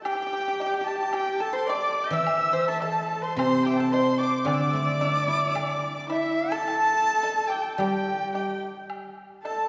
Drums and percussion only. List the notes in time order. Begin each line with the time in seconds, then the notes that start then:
0.05 high woodblock
0.60 low woodblock
1.13 high woodblock
1.69 low woodblock
2.27 high woodblock
2.81 low woodblock
3.39 high woodblock
3.93 low woodblock
4.47 high woodblock
5.01 low woodblock
5.55 high woodblock
6.12 low woodblock
6.68 high woodblock
7.24 low woodblock
7.79 high woodblock
8.34 low woodblock
8.90 high woodblock
9.45 low woodblock